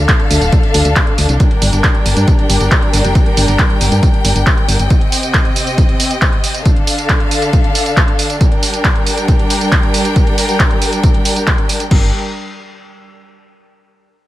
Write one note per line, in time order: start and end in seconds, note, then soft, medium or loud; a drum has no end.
0.00 1.38 D3 medium
0.00 4.86 D4 medium
0.00 1.38 A4 medium
0.00 1.38 F5 loud
0.09 kick loud
0.09 clap loud
0.09 closed hi-hat medium
0.09 tambourine soft
0.20 closed hi-hat soft
0.31 0.39 D2 loud
0.31 open hi-hat loud
0.31 tambourine medium
0.42 0.50 D1 medium
0.42 closed hi-hat medium
0.42 tambourine soft
0.52 kick loud
0.52 closed hi-hat medium
0.52 tambourine soft
0.63 closed hi-hat soft
0.74 0.83 D2 medium
0.74 open hi-hat loud
0.74 tambourine medium
0.85 0.94 D2 medium
0.85 closed hi-hat medium
0.85 tambourine soft
0.96 kick loud
0.96 clap loud
0.96 closed hi-hat medium
0.96 tambourine soft
1.07 closed hi-hat soft
1.18 1.27 D2 medium
1.18 open hi-hat loud
1.18 tambourine medium
1.29 1.38 C2 medium
1.29 closed hi-hat soft
1.29 tambourine soft
1.40 4.87 G3 medium
1.40 4.87 A#4 medium
1.40 6.62 G5 loud
1.40 kick loud
1.40 closed hi-hat medium
1.40 tambourine soft
1.51 closed hi-hat soft
1.62 1.71 G1 loud
1.62 open hi-hat loud
1.62 tambourine medium
1.73 1.82 G1 medium
1.73 closed hi-hat medium
1.73 tambourine soft
1.84 kick loud
1.84 clap loud
1.84 closed hi-hat medium
1.84 tambourine soft
1.95 closed hi-hat soft
2.06 2.15 G1 medium
2.06 open hi-hat loud
2.06 tambourine medium
2.17 2.26 G2 medium
2.17 closed hi-hat medium
2.17 tambourine soft
2.28 kick loud
2.28 closed hi-hat soft
2.28 tambourine soft
2.39 closed hi-hat soft
2.50 2.58 G1 medium
2.50 open hi-hat loud
2.50 tambourine medium
2.61 2.69 G1 medium
2.61 closed hi-hat medium
2.61 tambourine soft
2.71 kick loud
2.71 clap loud
2.71 closed hi-hat medium
2.71 tambourine soft
2.82 closed hi-hat soft
2.93 3.02 G1 medium
2.93 open hi-hat loud
2.93 tambourine medium
3.04 3.13 F1 medium
3.04 closed hi-hat medium
3.04 tambourine soft
3.15 kick loud
3.15 closed hi-hat soft
3.15 tambourine soft
3.26 closed hi-hat soft
3.37 3.46 G1 loud
3.37 open hi-hat loud
3.37 tambourine medium
3.48 3.57 G1 medium
3.48 closed hi-hat soft
3.48 tambourine soft
3.59 kick loud
3.59 clap loud
3.59 closed hi-hat medium
3.59 tambourine soft
3.70 closed hi-hat soft
3.81 3.90 G1 medium
3.81 open hi-hat loud
3.81 tambourine medium
3.92 4.01 G2 medium
3.92 closed hi-hat medium
3.92 tambourine soft
4.03 kick loud
4.03 closed hi-hat medium
4.03 tambourine soft
4.14 closed hi-hat soft
4.25 4.34 G1 medium
4.25 open hi-hat loud
4.25 tambourine medium
4.36 4.45 G1 medium
4.36 closed hi-hat soft
4.36 tambourine soft
4.47 kick loud
4.47 clap loud
4.47 closed hi-hat medium
4.47 tambourine soft
4.58 closed hi-hat soft
4.68 4.77 G1 loud
4.68 open hi-hat loud
4.68 tambourine medium
4.79 4.88 G1 medium
4.79 closed hi-hat soft
4.79 tambourine soft
4.90 6.64 C3 medium
4.90 6.64 C4 medium
4.90 6.64 D#5 medium
4.90 kick loud
4.90 closed hi-hat soft
4.90 tambourine soft
5.01 closed hi-hat soft
5.12 open hi-hat loud
5.12 tambourine medium
5.23 closed hi-hat soft
5.23 tambourine soft
5.34 kick loud
5.34 clap loud
5.34 closed hi-hat medium
5.34 tambourine soft
5.45 closed hi-hat soft
5.56 open hi-hat loud
5.56 tambourine medium
5.67 closed hi-hat medium
5.67 tambourine soft
5.78 kick loud
5.78 closed hi-hat medium
5.78 tambourine soft
5.89 closed hi-hat soft
6.00 open hi-hat loud
6.00 tambourine medium
6.11 closed hi-hat soft
6.11 tambourine soft
6.22 kick loud
6.22 clap loud
6.22 closed hi-hat medium
6.22 tambourine soft
6.33 closed hi-hat soft
6.44 open hi-hat loud
6.44 tambourine medium
6.54 closed hi-hat medium
6.54 tambourine soft
6.65 8.39 D3 medium
6.65 11.87 D4 medium
6.65 8.39 A4 medium
6.65 8.39 F5 loud
6.65 kick loud
6.65 closed hi-hat medium
6.65 tambourine soft
6.76 closed hi-hat soft
6.87 open hi-hat loud
6.87 tambourine medium
6.98 closed hi-hat soft
6.98 tambourine soft
7.09 kick loud
7.09 clap loud
7.09 closed hi-hat medium
7.09 tambourine soft
7.20 closed hi-hat soft
7.31 open hi-hat loud
7.31 tambourine medium
7.42 closed hi-hat medium
7.42 tambourine soft
7.53 kick loud
7.53 closed hi-hat medium
7.53 tambourine soft
7.64 closed hi-hat soft
7.75 open hi-hat loud
7.75 tambourine medium
7.86 closed hi-hat medium
7.86 tambourine soft
7.97 kick loud
7.97 clap loud
7.97 closed hi-hat medium
7.97 tambourine soft
8.08 closed hi-hat soft
8.19 open hi-hat loud
8.19 tambourine medium
8.30 closed hi-hat medium
8.30 tambourine soft
8.41 11.88 G3 medium
8.41 11.88 A#4 medium
8.41 11.88 G5 loud
8.41 kick loud
8.41 closed hi-hat medium
8.41 tambourine soft
8.52 closed hi-hat soft
8.63 open hi-hat loud
8.63 tambourine medium
8.74 closed hi-hat medium
8.74 tambourine soft
8.85 kick loud
8.85 clap loud
8.85 closed hi-hat medium
8.85 tambourine soft
8.96 closed hi-hat soft
9.06 open hi-hat loud
9.06 tambourine medium
9.18 closed hi-hat medium
9.18 tambourine soft
9.28 kick loud
9.28 closed hi-hat medium
9.28 tambourine soft
9.39 closed hi-hat soft
9.50 open hi-hat loud
9.50 tambourine medium
9.61 closed hi-hat medium
9.61 tambourine soft
9.72 kick loud
9.72 clap loud
9.72 closed hi-hat medium
9.72 tambourine soft
9.83 closed hi-hat soft
9.94 open hi-hat loud
9.94 tambourine medium
10.05 closed hi-hat medium
10.05 tambourine soft
10.16 kick loud
10.16 closed hi-hat medium
10.16 tambourine soft
10.27 closed hi-hat soft
10.38 open hi-hat loud
10.38 tambourine medium
10.49 closed hi-hat medium
10.49 tambourine soft
10.60 kick loud
10.60 clap loud
10.60 closed hi-hat medium
10.60 tambourine soft
10.71 closed hi-hat soft
10.82 open hi-hat loud
10.82 tambourine medium
10.93 closed hi-hat medium
10.93 tambourine soft
11.04 kick loud
11.04 closed hi-hat medium
11.04 tambourine soft
11.14 closed hi-hat soft
11.25 open hi-hat loud
11.25 tambourine medium
11.36 closed hi-hat medium
11.36 tambourine soft
11.47 kick loud
11.47 clap loud
11.47 closed hi-hat medium
11.47 tambourine soft
11.58 closed hi-hat soft
11.69 open hi-hat loud
11.69 tambourine medium
11.80 closed hi-hat medium
11.80 tambourine soft
11.91 12.11 G1 loud
11.91 12.11 G3 medium
11.91 12.11 D4 medium
11.91 12.11 A#4 medium
11.91 12.11 G5 medium
11.91 kick loud
11.91 crash medium